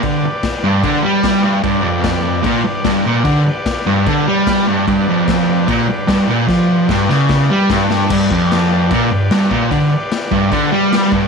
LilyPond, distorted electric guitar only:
\new Staff \with { instrumentName = "Distorted electric guitar" } { \clef bass \time 4/4 \key g \major \tempo 4 = 149 d8 r4 g,8 d8 g4 g,8 | g,8 f,4. bes,8 g,8 g,8 bes,8 | d8 r4 g,8 d8 g4 g,8 | g,8 f,4. bes,8 g,8 g,8 bes,8 |
f4 g,8 cis4 g8 g,4 | g,8 f,4. bes,8 g,8 g,8 bes,8 | d8 r4 g,8 d8 g4 g,8 | }